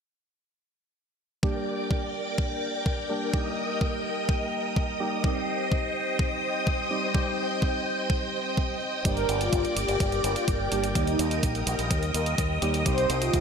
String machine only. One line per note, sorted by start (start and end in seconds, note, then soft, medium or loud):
1.43 5.20 A#4 medium
1.43 3.32 D5 medium
1.43 5.20 G5 medium
1.43 3.32 D6 medium
3.33 9.01 D#5 medium
3.33 9.01 D#6 medium
5.24 9.01 C5 medium
5.24 10.91 G5 medium
9.05 10.94 A#4 medium
9.05 10.94 D5 medium
9.05 10.94 D6 medium
10.96 12.84 A#4 medium
10.96 13.40 D#5 medium
10.96 13.40 G5 medium
10.96 13.40 D#6 medium
12.86 13.40 C5 medium